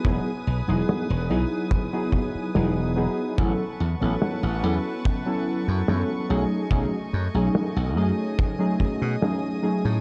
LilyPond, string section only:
\new Staff \with { instrumentName = "String section" } { \time 4/4 \key e \major \tempo 4 = 72 << { dis'''1 | cis'''1~ | cis'''4. dis'''2~ dis'''8 | } \\ { <b' gis''>1 | <b' fis'' a''>2.~ <b' fis'' a''>8 <a dis'' gis''>8~ | <a dis'' gis''>1 | } >> }